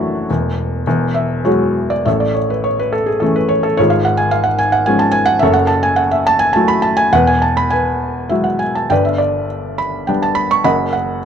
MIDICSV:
0, 0, Header, 1, 2, 480
1, 0, Start_track
1, 0, Key_signature, 3, "major"
1, 0, Tempo, 568182
1, 246, Time_signature, 3, 2, 24, 8
1, 728, Tempo, 591133
1, 2648, Tempo, 550964
1, 5048, Tempo, 576923
1, 6488, Tempo, 592300
1, 8408, Tempo, 561798
1, 9407, End_track
2, 0, Start_track
2, 0, Title_t, "Felt piano"
2, 0, Program_c, 0, 0
2, 0, Control_c, 0, 64, 127
2, 0, Note_on_c, 0, 30, 68
2, 0, Note_on_c, 0, 42, 78
2, 0, Note_on_c, 0, 52, 53
2, 0, Note_on_c, 0, 54, 50
2, 0, Note_on_c, 0, 57, 50
2, 0, Note_on_c, 0, 62, 54
2, 0, Note_on_c, 0, 64, 70
2, 0, Note_on_c, 0, 66, 94
2, 218, Note_off_c, 0, 30, 0
2, 218, Note_off_c, 0, 42, 0
2, 236, Note_off_c, 0, 52, 0
2, 238, Note_off_c, 0, 54, 0
2, 240, Note_off_c, 0, 62, 0
2, 254, Note_on_c, 0, 28, 60
2, 254, Note_on_c, 0, 40, 58
2, 256, Control_c, 0, 64, 0
2, 260, Note_off_c, 0, 66, 0
2, 400, Control_c, 0, 64, 127
2, 698, Note_off_c, 0, 28, 0
2, 717, Note_off_c, 0, 40, 0
2, 734, Note_on_c, 0, 28, 59
2, 735, Control_c, 0, 64, 0
2, 735, Note_on_c, 0, 40, 69
2, 887, Control_c, 0, 64, 127
2, 957, Note_on_c, 0, 76, 75
2, 1176, Note_off_c, 0, 64, 0
2, 1184, Note_off_c, 0, 57, 0
2, 1203, Note_on_c, 0, 56, 45
2, 1204, Note_on_c, 0, 54, 41
2, 1204, Note_on_c, 0, 73, 60
2, 1207, Note_on_c, 0, 64, 45
2, 1214, Note_off_c, 0, 76, 0
2, 1223, Note_on_c, 0, 66, 49
2, 1223, Note_on_c, 0, 68, 45
2, 1572, Note_on_c, 0, 74, 66
2, 1590, Note_off_c, 0, 73, 0
2, 1673, Note_off_c, 0, 28, 0
2, 1676, Note_off_c, 0, 66, 0
2, 1676, Note_off_c, 0, 68, 0
2, 1677, Note_off_c, 0, 40, 0
2, 1683, Note_off_c, 0, 56, 0
2, 1684, Note_off_c, 0, 54, 0
2, 1685, Note_off_c, 0, 64, 0
2, 1697, Note_on_c, 0, 45, 49
2, 1697, Note_on_c, 0, 76, 66
2, 1699, Note_on_c, 0, 33, 49
2, 1701, Note_off_c, 0, 74, 0
2, 1712, Control_c, 0, 64, 0
2, 1715, Note_on_c, 0, 73, 46
2, 1718, Note_on_c, 0, 69, 49
2, 1816, Note_on_c, 0, 74, 61
2, 1823, Note_off_c, 0, 76, 0
2, 1837, Control_c, 0, 64, 127
2, 1921, Note_off_c, 0, 73, 0
2, 1933, Note_on_c, 0, 73, 59
2, 1942, Note_off_c, 0, 74, 0
2, 2047, Note_off_c, 0, 73, 0
2, 2060, Note_on_c, 0, 71, 60
2, 2171, Note_on_c, 0, 73, 63
2, 2182, Note_off_c, 0, 71, 0
2, 2296, Note_off_c, 0, 73, 0
2, 2297, Note_on_c, 0, 71, 65
2, 2390, Note_off_c, 0, 69, 0
2, 2404, Note_on_c, 0, 69, 65
2, 2418, Note_off_c, 0, 71, 0
2, 2516, Note_on_c, 0, 68, 60
2, 2517, Note_off_c, 0, 69, 0
2, 2627, Note_on_c, 0, 69, 62
2, 2632, Note_off_c, 0, 68, 0
2, 2640, Note_on_c, 0, 52, 49
2, 2641, Note_on_c, 0, 57, 41
2, 2649, Note_on_c, 0, 61, 50
2, 2761, Note_on_c, 0, 71, 68
2, 2765, Note_off_c, 0, 69, 0
2, 2874, Note_on_c, 0, 73, 70
2, 2894, Note_off_c, 0, 71, 0
2, 3001, Note_on_c, 0, 69, 74
2, 3010, Note_off_c, 0, 73, 0
2, 3101, Note_off_c, 0, 33, 0
2, 3101, Note_off_c, 0, 45, 0
2, 3119, Note_off_c, 0, 52, 0
2, 3120, Note_off_c, 0, 57, 0
2, 3124, Note_off_c, 0, 61, 0
2, 3125, Note_on_c, 0, 73, 81
2, 3134, Note_off_c, 0, 69, 0
2, 3135, Note_on_c, 0, 32, 61
2, 3135, Note_on_c, 0, 44, 55
2, 3146, Note_on_c, 0, 65, 60
2, 3148, Control_c, 0, 64, 0
2, 3155, Note_on_c, 0, 68, 61
2, 3234, Note_on_c, 0, 77, 70
2, 3255, Note_off_c, 0, 73, 0
2, 3297, Control_c, 0, 64, 127
2, 3364, Note_on_c, 0, 78, 78
2, 3369, Note_off_c, 0, 77, 0
2, 3474, Note_on_c, 0, 80, 81
2, 3480, Note_off_c, 0, 78, 0
2, 3594, Note_off_c, 0, 80, 0
2, 3595, Note_on_c, 0, 77, 81
2, 3702, Note_on_c, 0, 78, 78
2, 3713, Note_off_c, 0, 77, 0
2, 3819, Note_off_c, 0, 65, 0
2, 3823, Note_off_c, 0, 68, 0
2, 3832, Note_on_c, 0, 80, 91
2, 3839, Note_off_c, 0, 78, 0
2, 3950, Note_off_c, 0, 80, 0
2, 3952, Note_on_c, 0, 78, 88
2, 4070, Note_off_c, 0, 78, 0
2, 4071, Note_on_c, 0, 80, 83
2, 4081, Note_on_c, 0, 53, 51
2, 4084, Note_on_c, 0, 56, 48
2, 4091, Note_on_c, 0, 61, 56
2, 4185, Note_on_c, 0, 81, 85
2, 4202, Note_off_c, 0, 80, 0
2, 4294, Note_on_c, 0, 80, 98
2, 4318, Note_off_c, 0, 81, 0
2, 4416, Note_on_c, 0, 78, 103
2, 4433, Note_off_c, 0, 80, 0
2, 4528, Note_off_c, 0, 32, 0
2, 4528, Note_off_c, 0, 44, 0
2, 4536, Note_on_c, 0, 76, 95
2, 4540, Note_off_c, 0, 78, 0
2, 4547, Note_off_c, 0, 53, 0
2, 4549, Note_off_c, 0, 56, 0
2, 4552, Note_off_c, 0, 61, 0
2, 4559, Note_on_c, 0, 30, 66
2, 4563, Note_on_c, 0, 42, 68
2, 4566, Note_on_c, 0, 69, 71
2, 4567, Note_on_c, 0, 73, 74
2, 4575, Control_c, 0, 64, 0
2, 4659, Note_on_c, 0, 78, 87
2, 4660, Note_off_c, 0, 76, 0
2, 4743, Control_c, 0, 64, 127
2, 4778, Note_on_c, 0, 81, 81
2, 4796, Note_off_c, 0, 78, 0
2, 4903, Note_off_c, 0, 81, 0
2, 4914, Note_on_c, 0, 80, 90
2, 5031, Note_on_c, 0, 78, 82
2, 5045, Note_off_c, 0, 80, 0
2, 5159, Note_on_c, 0, 76, 83
2, 5160, Note_off_c, 0, 78, 0
2, 5250, Note_off_c, 0, 69, 0
2, 5250, Note_off_c, 0, 73, 0
2, 5283, Note_off_c, 0, 76, 0
2, 5285, Note_on_c, 0, 81, 108
2, 5390, Note_on_c, 0, 80, 96
2, 5407, Note_off_c, 0, 81, 0
2, 5504, Note_on_c, 0, 81, 86
2, 5508, Note_off_c, 0, 80, 0
2, 5526, Note_on_c, 0, 54, 57
2, 5529, Note_on_c, 0, 57, 49
2, 5533, Note_on_c, 0, 64, 60
2, 5630, Note_on_c, 0, 83, 97
2, 5639, Note_off_c, 0, 81, 0
2, 5747, Note_on_c, 0, 81, 87
2, 5749, Note_off_c, 0, 83, 0
2, 5867, Note_off_c, 0, 81, 0
2, 5868, Note_on_c, 0, 80, 98
2, 5969, Note_off_c, 0, 30, 0
2, 5971, Note_off_c, 0, 42, 0
2, 5992, Note_off_c, 0, 54, 0
2, 5993, Note_off_c, 0, 57, 0
2, 5996, Note_off_c, 0, 64, 0
2, 5998, Note_on_c, 0, 28, 56
2, 6000, Note_off_c, 0, 80, 0
2, 6001, Note_on_c, 0, 78, 96
2, 6003, Note_on_c, 0, 40, 69
2, 6016, Control_c, 0, 64, 0
2, 6023, Note_on_c, 0, 71, 69
2, 6123, Note_on_c, 0, 80, 78
2, 6126, Note_off_c, 0, 78, 0
2, 6144, Control_c, 0, 64, 127
2, 6243, Note_on_c, 0, 81, 78
2, 6247, Note_off_c, 0, 80, 0
2, 6356, Note_off_c, 0, 81, 0
2, 6369, Note_on_c, 0, 83, 85
2, 6482, Note_on_c, 0, 80, 82
2, 6492, Note_off_c, 0, 83, 0
2, 6493, Note_off_c, 0, 71, 0
2, 6505, Note_on_c, 0, 71, 63
2, 6960, Note_on_c, 0, 76, 63
2, 6965, Note_on_c, 0, 56, 37
2, 6966, Note_on_c, 0, 54, 43
2, 6973, Note_on_c, 0, 64, 47
2, 6981, Note_off_c, 0, 80, 0
2, 7076, Note_on_c, 0, 78, 59
2, 7091, Note_off_c, 0, 76, 0
2, 7190, Note_off_c, 0, 71, 0
2, 7200, Note_on_c, 0, 80, 68
2, 7209, Note_off_c, 0, 78, 0
2, 7319, Note_off_c, 0, 80, 0
2, 7333, Note_on_c, 0, 81, 65
2, 7420, Note_off_c, 0, 28, 0
2, 7422, Note_off_c, 0, 40, 0
2, 7439, Note_off_c, 0, 54, 0
2, 7439, Note_off_c, 0, 56, 0
2, 7443, Note_off_c, 0, 64, 0
2, 7449, Note_on_c, 0, 79, 80
2, 7450, Note_on_c, 0, 31, 53
2, 7453, Note_on_c, 0, 43, 59
2, 7458, Note_off_c, 0, 81, 0
2, 7466, Control_c, 0, 64, 0
2, 7467, Note_on_c, 0, 74, 58
2, 7470, Note_on_c, 0, 71, 63
2, 7565, Note_off_c, 0, 79, 0
2, 7571, Note_on_c, 0, 76, 66
2, 7621, Control_c, 0, 64, 127
2, 7669, Note_off_c, 0, 74, 0
2, 7681, Note_on_c, 0, 74, 64
2, 7698, Note_off_c, 0, 76, 0
2, 7911, Note_off_c, 0, 74, 0
2, 8149, Note_off_c, 0, 71, 0
2, 8166, Note_on_c, 0, 83, 72
2, 8401, Note_on_c, 0, 79, 65
2, 8410, Note_on_c, 0, 59, 41
2, 8412, Note_off_c, 0, 83, 0
2, 8412, Note_on_c, 0, 55, 48
2, 8413, Note_on_c, 0, 62, 53
2, 8530, Note_off_c, 0, 79, 0
2, 8531, Note_on_c, 0, 81, 73
2, 8638, Note_on_c, 0, 83, 85
2, 8643, Note_off_c, 0, 81, 0
2, 8768, Note_off_c, 0, 83, 0
2, 8774, Note_on_c, 0, 85, 91
2, 8853, Note_off_c, 0, 31, 0
2, 8855, Note_off_c, 0, 43, 0
2, 8877, Note_off_c, 0, 59, 0
2, 8878, Note_off_c, 0, 55, 0
2, 8879, Note_off_c, 0, 62, 0
2, 8887, Note_on_c, 0, 30, 60
2, 8887, Note_on_c, 0, 42, 66
2, 8889, Note_on_c, 0, 83, 90
2, 8892, Note_on_c, 0, 75, 68
2, 8895, Note_off_c, 0, 85, 0
2, 8896, Note_on_c, 0, 78, 69
2, 8900, Control_c, 0, 64, 0
2, 9058, Control_c, 0, 64, 127
2, 9118, Note_off_c, 0, 78, 0
2, 9131, Note_on_c, 0, 78, 65
2, 9135, Note_off_c, 0, 83, 0
2, 9352, Note_off_c, 0, 78, 0
2, 9407, Note_off_c, 0, 30, 0
2, 9407, Note_off_c, 0, 42, 0
2, 9407, Note_off_c, 0, 75, 0
2, 9407, End_track
0, 0, End_of_file